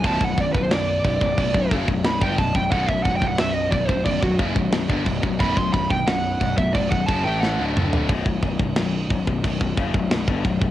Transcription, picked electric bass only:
\new Staff \with { instrumentName = "Picked electric bass" } { \clef bass \time 4/4 \key b \minor \tempo 4 = 89 b,,,16 b,,,16 b,,,16 b,,,16 b,,,8 b,,,16 b,,,16 b,,,16 b,,,16 fis,,16 b,,,16 b,,,16 g,,16 b,,,16 b,,,16 | b,,,16 b,,,16 b,,,16 b,,,16 b,,,8 b,,,16 b,,,16 b,,,16 b,,,16 fis,,16 b,,,16 b,,,16 g,,16 b,,,16 b,,,16 | b,,,16 b,,,16 b,,,16 b,,,16 b,,,8 b,,,16 b,,,16 b,,,16 b,,,16 fis,,16 a,,8 d,,8. | b,,,16 b,,,16 b,,,16 b,,,16 b,,,8 b,,,16 b,,,16 b,,,16 b,,,16 fis,,16 b,,,16 b,,,16 g,,16 b,,,16 b,,,16 | }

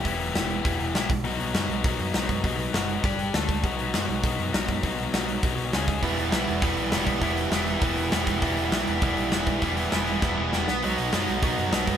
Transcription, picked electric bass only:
\new Staff \with { instrumentName = "Picked electric bass" } { \clef bass \time 4/4 \key e \minor \tempo 4 = 201 e,,4 e,,4 e,,8 e,,8 ais,,8 b,,8 | b,,8 b,,8 fis,8 b,,8 b,,8 fis,8 b,,8 fis,8 | b,,4 fis,,4 g,,8 g,,8 d,8 d,8 | b,,8 b,,8 fis,8 b,,8 b,,8 fis,8 b,,8 fis,8 |
b,,4 b,,4 b,,8 b,,8 cis,8 cis,8 | e,,8 e,,8 b,,8 e,,8 e,,8 b,,8 e,,8 b,,8 | e,,4 e,,4 e,,8 e,,8 e,,8 e,,8 | e,,8 e,,8 b,,8 e,,8 e,,8 b,,8 e,,8 b,,8 |
e,,4 e,,4 e,,8 e,,8 e,,8 b,,8 | b,,8 b,,8 fis,8 b,,8 b,,8 fis,8 b,,8 fis,8 | }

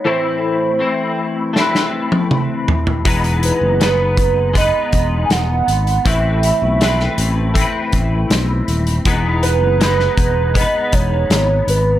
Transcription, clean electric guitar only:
\new Staff \with { instrumentName = "Clean electric guitar" } { \time 4/4 \key e \major \tempo 4 = 80 <a, e a c' e'>4 <a c' e'>4 <a c' e' b'>2 | <e gis b dis' b'>4 <gis b dis' b'>4 <gis b dis' b'>2 | <a, e a c' e' b'>4 <a c' e' b'>4 <a c' e' b'>2 | <e gis b dis' b'>4 <gis b dis' b'>4 <gis b dis' b'>2 | }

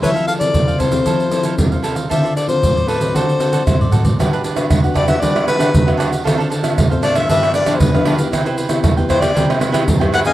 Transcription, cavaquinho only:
\new Staff \with { instrumentName = "Cavaquinho" } { \time 4/4 \key d \dorian \tempo 4 = 116 <e' a' c'' f''>16 <e' a' c'' f''>16 <a' c'' f''>8. <a' c'' f''>16 <e' a' c'' f''>16 <a' c'' f''>16 <e' a' c'' f''>8 <e' a' c'' f''>16 <e' a' c'' f''>16 r16 <a' c'' f''>16 <e' a' c'' f''>16 <a' c'' f''>16 | <f' a' c'' d''>16 <f' a' c'' d''>16 <f' a' c'' d''>8. <a' c'' d''>16 <f' a' c'' d''>16 <a' c'' d''>16 <fis' a' c'' d''>8 <fis' a' c'' d''>16 <fis' a' c'' d''>16 r16 <a' c'' d''>16 <fis' a' c'' d''>16 <a' c'' d''>16 | \key g \major <d' g' b' fis''>16 <d' g' b' fis''>16 <d' g' b' fis''>8. <g' b' fis''>16 <d' g' b' fis''>16 <g' b' fis''>16 <d' g' b' fis''>8 <d' g' b' fis''>16 <d' g' b' fis''>16 r16 <g' b' fis''>16 <d' g' b' fis''>16 <g' b' fis''>16 | <d' a' c'' f''>16 <d' a' c'' f''>16 <d' a' c'' f''>8. <a' c'' f''>16 <d' a' c'' f''>16 <a' c'' f''>16 <d' g' b' f''>8 <d' g' b' f''>16 <d' g' b' f''>16 r16 <g' b' f''>16 <d' g' b' f''>16 <g' b' f''>16 |
<e' b' c'' g''>16 <e' b' c'' g''>16 <e' b' c'' g''>8. <b' c'' g''>16 <e' b' c'' g''>16 <b' c'' g''>16 <e' b' c'' g''>8 <e' b' c'' g''>16 <e' b' c'' g''>16 r16 <b' c'' g''>16 <e' b' c'' g''>16 <b' c'' g''>16 | }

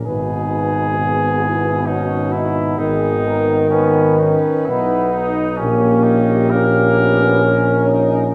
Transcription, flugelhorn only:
\new Staff \with { instrumentName = "Flugelhorn" } { \time 3/4 \key gis \phrygian \tempo 4 = 66 gis'2 dis'8 e'8 | \key gis \minor dis'4 cis'8 dis'8 e'8 dis'8 | cis'8 dis'8 ais'4. r8 | }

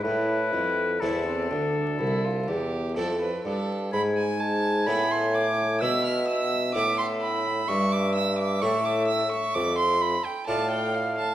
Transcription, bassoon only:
\new Staff \with { instrumentName = "Bassoon" } { \clef bass \time 4/4 \key a \minor \tempo 4 = 64 a,8 f,8 e,8 d,8 c,8 e,8 f,8 g,8 | gis,4 a,4 b,4 a,4 | g,4 a,4 f,8 r8 a,4 | }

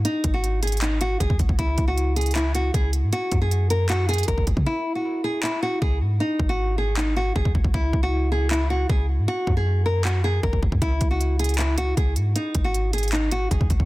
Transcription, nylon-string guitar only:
\new Staff \with { instrumentName = "Nylon-string guitar" } { \time 4/4 \key cis \dorian \tempo 4 = 156 dis'8. fis'8. gis'8 dis'8 fis'8 gis'8 r8 | e'8. fis'8. gis'8 e'8 fis'8 gis'8 r8 | fis'8. gis'8. ais'8 fis'8 gis'8 ais'8 r8 | e'8. fis'8. gis'8 e'8 fis'8 gis'8 r8 |
dis'8. fis'8. gis'8 dis'8 fis'8 gis'8 r8 | e'8. fis'8. gis'8 e'8 fis'8 gis'8 r8 | fis'8. gis'8. ais'8 fis'8 gis'8 ais'8 r8 | e'8. fis'8. gis'8 e'8 fis'8 gis'8 r8 |
dis'8. fis'8. gis'8 dis'8 fis'8 gis'8 r8 | }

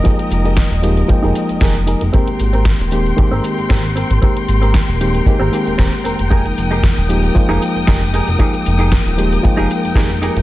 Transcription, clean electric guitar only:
\new Staff \with { instrumentName = "Clean electric guitar" } { \time 4/4 \key f \minor \tempo 4 = 115 <ees' g' aes' bes'>16 r8 <ees' g' aes' bes'>16 r4 r16 <ees' g' aes' bes'>16 r8 <ees' g' aes' bes'>16 r16 <ees' g' aes' bes'>16 r16 | <c' g' bes'>16 r8 <c' g' bes'>16 r4 r16 <c' g' bes'>16 r8 <c' g' bes'>16 r16 <c' g' bes'>16 r16 | <c' g' bes'>16 r8 <c' g' bes'>16 r4 r16 <c' g' bes'>16 r8 <c' g' bes'>16 r16 <c' g' bes'>16 r16 | <ees' g' aes' bes'>16 r8 <ees' g' aes' bes'>16 r4 r16 <ees' g' aes' bes'>16 r8 <ees' g' aes' bes'>16 r16 <ees' g' aes' bes'>16 r16 |
<ees' g' aes' bes'>16 r8 <ees' g' aes' bes'>16 r4 r16 <ees' g' aes' bes'>16 r8 <ees' g' aes' bes'>16 r16 <ees' g' aes' bes'>16 r16 | }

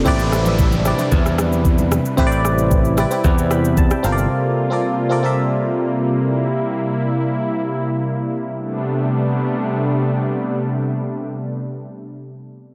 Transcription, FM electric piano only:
\new Staff \with { instrumentName = "FM electric piano" } { \time 4/4 \key a \minor \tempo 4 = 113 << { r1 | r2 r8 <g'' b''>8 a''16 <e'' g''>16 f''8 | r1 | r1 |
r1 | r1 | } \\ { <c' e' g' b' d''>8 r16 <c' e' g' b' e''>8 r16 <c' e' g' b' d''>16 <c' e' g' b' d''>4. r8. | <c' e' g' b' c'' d''>4~ <c' e' g' b' c'' d''>16 r16 <c' e' g' b' d''>16 <c' e' g' b' d''>8 r4 r16 <c' f' a' bes' c'' d''>8~ | <c' f' a' bes' c'' d''>8 r16 <c' f' a' bes' d''>8 r16 <c' f' a' bes' d''>16 <c' f' a' bes' e''>4. r8. | r1 |
r1 | r1 | } >> }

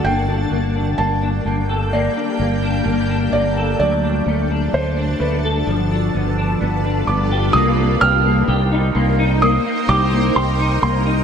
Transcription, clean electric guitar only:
\new Staff \with { instrumentName = "Clean electric guitar" } { \time 4/4 \key g \minor \tempo 4 = 64 bes16 d'16 bes16 d'16 bes16 d'16 bes16 a'16 bes16 d'16 bes16 d'16 bes16 d'16 bes16 a'16 | fis16 d'16 a16 d'16 a16 d'16 a16 a'16 f16 d'16 b16 d'16 b16 d'16 b16 g'16 | \key c \dorian bes16 bes16 g'16 bes16 g'16 ees'16 bes16 ees'16 bes16 bes16 g'16 bes16 g'16 ees'16 bes16 ees'16 | }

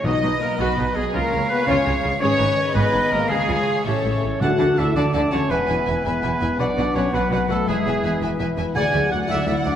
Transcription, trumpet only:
\new Staff \with { instrumentName = "Trumpet" } { \time 6/8 \key cis \mixolydian \tempo 4. = 111 dis''4 ais'8 b'4 gis'8 | ais'4 b'8 cis''4 r8 | cis''4. b'4 ais'8 | gis'4. cis''4. |
\key d \lydian fis''4 e''8 d''8 d''8 cis''8 | b'4. b'4. | d''4 cis''8 b'8 b'8 a'8 | gis'4. r4. |
gis''4 fis''8 e''8 e''8 d''8 | }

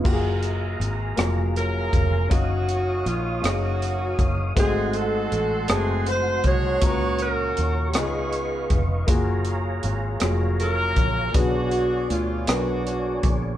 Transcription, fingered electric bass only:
\new Staff \with { instrumentName = "Fingered electric bass" } { \clef bass \time 6/8 \key fis \major \tempo 4. = 53 fis,,4 gis,,8 eis,,4 eis,,8 | fis,,4 ais,,8 fis,,4 fis,,8 | gis,,4 a,,8 fis,,4 bis,,8 | cis,4 dis,8 cis,4 eis,,8 |
fis,,4 gis,,8 eis,,4 ais,,8 | b,,4 d,8 b,,4 ais,,8 | }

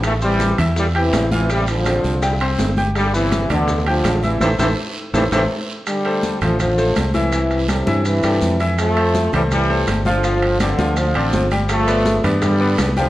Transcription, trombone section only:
\new Staff \with { instrumentName = "Trombone section" } { \clef bass \time 4/4 \key g \mixolydian \tempo 4 = 165 <e a>8 <e g>4 r8 <e g>8 <c e>4 <c e>8 | <c g>8 <d f>2 r4. | <d g>8 <c e>4 <b, d>4 <d f>4 <c e>8 | <a, c e>8 <a, c e>8 r4 <a, c e>8 <a, c e>8 r4 |
<d g>4. <d f>8 <d f>4 r8 <c e>8~ | <c e>4 <a, c>4 <c e>4. r8 | <f a>4. <e g>8 <e g>4 r8 <d f>8~ | <d f>4 <g, d>4 <d f>4. r8 |
<f a>4. r8 <d g>4 r8 <d f>8 | }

